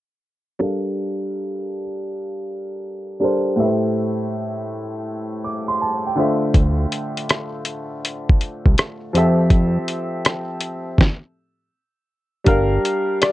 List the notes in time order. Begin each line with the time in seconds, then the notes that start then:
0.59 G3 D4 A4 A#4
0.63 F5
3.20 G3 D4 A4 A#4
3.24 C5
3.56 A2 A3 G4 B4
3.60 E5
3.65 C5
5.44 D6
5.68 C6
5.81 A5
6.07 G5
6.16 D3 A3 F4 C5
6.20 E5
6.54 D2, kick, closed hi-hat
6.92 closed hi-hat
7.17 closed hi-hat
7.29 cross-stick, closed hi-hat
7.65 closed hi-hat
8.05 closed hi-hat
8.29 kick
8.41 closed hi-hat
8.66 C2, kick
8.78 cross-stick, closed hi-hat
9.13 F2 F3 C4 G4 A4, closed hi-hat
9.18 E5
9.50 kick, closed hi-hat
9.88 closed hi-hat
10.25 cross-stick, closed hi-hat
10.61 closed hi-hat
10.98 kick, snare
12.44 G1 G3 D4 G4 A#4, kick, closed hi-hat
12.49 F5
12.85 closed hi-hat
13.22 D5, cross-stick, closed hi-hat